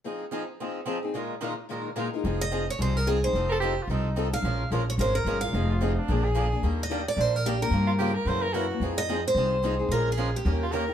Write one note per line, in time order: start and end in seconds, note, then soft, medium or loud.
0.04 0.23 F3 soft
0.04 0.24 C4 medium
0.04 0.24 D#4 medium
0.04 0.24 G#4 medium
0.32 0.43 F3 medium
0.32 0.43 C4 medium
0.32 0.43 D#4 medium
0.32 0.43 G#4 medium
0.61 0.79 F3 medium
0.61 0.79 C4 medium
0.61 0.79 D#4 medium
0.61 0.79 G#4 medium
0.86 0.97 F3 medium
0.86 0.97 C4 medium
0.86 0.97 D#4 medium
0.86 0.98 G#4 medium
1.03 1.14 C4 soft
1.03 1.14 D#4 soft
1.03 1.14 G#4 medium
1.14 1.33 A#2 medium
1.14 1.33 D#3 medium
1.14 1.33 G#3 medium
1.14 1.33 D#4 medium
1.14 1.34 F4 medium
1.14 1.33 A#4 medium
1.41 1.52 A#2 medium
1.41 1.52 D#3 medium
1.41 1.53 G#3 medium
1.41 1.53 D#4 medium
1.41 1.53 F4 medium
1.41 1.53 A#4 medium
1.69 1.88 A#2 medium
1.69 1.88 D#3 medium
1.69 1.88 G#3 medium
1.69 1.88 D#4 medium
1.69 1.88 F4 medium
1.69 1.89 A#4 medium
1.96 2.07 A#2 medium
1.96 2.07 D#3 medium
1.96 2.07 G#3 medium
1.96 2.07 D#4 medium
1.96 2.07 F4 medium
1.96 2.08 A#4 medium
2.13 2.25 G#3 soft
2.13 2.25 D#4 soft
2.13 2.24 F4 soft
2.13 2.24 A#4 soft
2.24 2.68 F1 medium
2.24 2.44 F3 medium
2.24 2.44 C4 medium
2.24 2.44 D#4 medium
2.24 2.44 G#4 medium
2.41 2.66 D#5 loud
2.52 2.62 F3 medium
2.52 2.63 C4 medium
2.52 2.63 D#4 medium
2.52 2.63 G#4 medium
2.70 2.80 C#5 medium
2.78 3.23 C2 medium
2.78 2.97 F3 medium
2.78 2.98 C4 medium
2.78 2.98 D#4 medium
2.78 2.98 G#4 medium
2.78 2.97 C5 medium
2.97 3.08 A#4 medium
3.06 3.17 F3 medium
3.06 3.17 C4 medium
3.06 3.17 D#4 medium
3.06 3.22 G#4 medium
3.06 3.17 G#4 medium
3.23 3.35 C4 soft
3.23 3.35 D#4 soft
3.23 3.34 G#4 medium
3.23 3.74 C5 medium
3.33 3.77 F1 medium
3.33 3.54 F3 medium
3.33 3.54 C4 medium
3.33 3.54 D#4 medium
3.37 3.54 A4 medium
3.49 3.56 A4 medium
3.49 3.51 A#4 medium
3.60 3.72 F3 medium
3.60 3.73 C4 medium
3.60 3.73 D#4 medium
3.60 3.84 G4 medium
3.60 3.73 A4 medium
3.83 3.89 F4 medium
3.87 4.32 C2 medium
3.87 4.08 F3 medium
3.87 4.08 C4 medium
3.87 4.08 D#4 medium
3.87 4.23 D#4 medium
3.87 4.08 A4 medium
4.16 4.27 F3 medium
4.16 4.27 C4 medium
4.16 4.27 D#4 medium
4.16 4.27 A4 medium
4.33 4.44 C4 soft
4.33 4.44 D#4 medium
4.33 4.43 A4 medium
4.33 4.69 F5 medium
4.43 4.65 A#1 medium
4.43 4.62 F3 medium
4.43 4.63 G#3 medium
4.43 4.63 C#4 medium
4.43 4.63 F4 medium
4.43 4.63 A#4 medium
4.70 4.94 A#1 medium
4.70 4.82 F3 medium
4.70 4.82 G#3 medium
4.70 4.82 C#4 medium
4.70 4.82 F4 medium
4.70 4.82 A#4 medium
4.90 4.93 C#5 medium
4.98 5.21 G#1 medium
4.98 5.17 F3 medium
4.98 5.17 G#3 medium
4.98 5.17 C#4 medium
4.98 5.18 F4 medium
4.98 5.01 A#4 medium
4.98 5.18 A#4 medium
4.98 5.14 C5 medium
5.15 5.40 A#4 medium
5.25 5.48 G1 medium
5.25 5.36 F3 medium
5.25 5.36 G#3 medium
5.25 5.36 C#4 medium
5.25 5.37 F4 medium
5.25 5.37 A#4 medium
5.41 5.54 C#4 soft
5.41 5.54 F4 soft
5.41 5.53 A#4 soft
5.41 6.19 F5 medium
5.53 5.97 F1 medium
5.53 5.72 F3 medium
5.53 5.72 C4 medium
5.53 5.72 D#4 medium
5.53 5.73 G#4 medium
5.69 5.84 F4 medium
5.81 5.91 F3 medium
5.81 5.91 C4 medium
5.81 5.92 D#4 medium
5.81 6.00 D#4 medium
5.81 5.92 G#4 medium
5.99 6.26 D4 medium
6.08 6.52 A#1 medium
6.08 6.27 D3 medium
6.08 6.27 F3 medium
6.08 6.28 A#3 medium
6.08 6.28 D4 medium
6.08 6.28 G#4 medium
6.24 6.71 G#4 loud
6.35 6.45 D3 medium
6.35 6.46 F3 medium
6.35 6.46 A#3 medium
6.35 6.46 D4 medium
6.35 6.46 G#4 medium
6.52 6.63 A#3 soft
6.52 6.63 D4 soft
6.52 6.63 G#4 medium
6.63 7.06 D#2 medium
6.63 6.82 D#3 medium
6.63 6.82 G3 medium
6.63 6.82 A#3 medium
6.63 6.82 D4 medium
6.63 6.82 G4 medium
6.83 7.06 D#5 loud
6.90 7.00 D#3 medium
6.90 7.00 G3 medium
6.90 7.01 A#3 medium
6.90 7.01 D4 medium
6.90 7.01 G4 medium
7.08 7.20 D5 medium
7.17 7.61 A#1 medium
7.17 7.36 D#3 medium
7.17 7.36 G3 medium
7.17 7.36 A#3 medium
7.17 7.37 D4 medium
7.17 7.37 G4 medium
7.17 7.36 C5 medium
7.36 7.46 A#4 medium
7.45 7.55 D#3 medium
7.45 7.56 G3 medium
7.45 7.56 A#3 medium
7.45 7.56 D4 medium
7.45 7.62 G4 medium
7.45 7.56 G4 medium
7.61 7.72 A#3 soft
7.61 7.72 D4 soft
7.61 7.72 G4 medium
7.61 8.12 A#4 medium
7.71 8.15 G2 medium
7.71 7.91 C#3 medium
7.71 7.91 F3 medium
7.71 7.91 A#3 medium
7.71 7.91 F4 medium
7.71 7.92 G4 medium
7.87 7.92 F4 medium
7.99 8.10 C#3 medium
7.99 8.10 F3 medium
7.99 8.10 A#3 medium
7.99 8.10 F4 medium
7.99 8.16 G4 medium
7.99 8.11 G4 medium
8.14 8.29 A#4 medium
8.25 8.70 F#2 medium
8.25 8.46 C#3 medium
8.25 8.46 E3 medium
8.25 8.45 F#3 medium
8.25 8.46 A#3 medium
8.25 8.46 C#4 medium
8.25 8.46 E4 medium
8.25 8.46 F#4 medium
8.25 8.46 A#4 medium
8.25 8.44 C5 loud
8.42 8.55 A#4 medium
8.54 8.64 C#3 medium
8.54 8.65 E3 medium
8.54 8.64 F#3 medium
8.54 8.65 A#3 medium
8.54 8.65 C#4 medium
8.54 8.65 E4 loud
8.54 8.89 F#4 medium
8.54 8.65 F#4 medium
8.54 8.65 A#4 medium
8.70 8.82 A#3 soft
8.70 8.82 C#4 soft
8.70 8.81 F#4 soft
8.80 9.24 F2 medium
8.80 9.01 F3 medium
8.80 9.01 C4 medium
8.80 9.01 D#4 medium
8.80 9.01 G#4 medium
8.98 9.23 D#5 loud
9.09 9.19 F3 medium
9.09 9.20 C4 medium
9.09 9.20 D#4 medium
9.09 9.20 G#4 medium
9.28 9.93 C5 medium
9.35 9.79 C2 medium
9.35 9.55 F3 medium
9.35 9.55 C4 medium
9.35 9.56 D#4 medium
9.35 9.56 G#4 medium
9.64 9.74 F3 medium
9.64 9.74 C4 medium
9.64 9.74 D#4 medium
9.64 9.75 G#4 medium
9.79 9.91 C4 soft
9.79 9.91 D#4 medium
9.79 9.90 G#4 medium
9.88 10.33 A#1 medium
9.88 10.10 F3 medium
9.88 10.10 G#3 medium
9.88 10.10 C#4 medium
9.88 10.10 F4 medium
9.88 10.08 A#4 medium
9.93 10.10 A#4 medium
10.12 10.35 G#4 medium
10.17 10.28 F3 medium
10.17 10.28 G#3 medium
10.17 10.28 C#4 medium
10.17 10.29 F4 medium
10.17 10.29 A#4 medium
10.36 10.86 G4 medium
10.45 10.89 D#2 medium
10.45 10.64 D#3 medium
10.45 10.64 A#3 medium
10.45 10.64 C#4 medium
10.45 10.65 G4 medium
10.45 10.65 A#4 medium
10.63 10.74 F4 medium
10.72 10.83 D#3 medium
10.72 10.83 A#3 medium
10.72 10.83 C#4 medium
10.72 10.84 G4 medium
10.72 10.94 A#4 medium
10.72 10.84 A#4 medium
10.88 10.94 C#4 soft
10.88 10.94 G4 soft
10.88 10.94 A#4 medium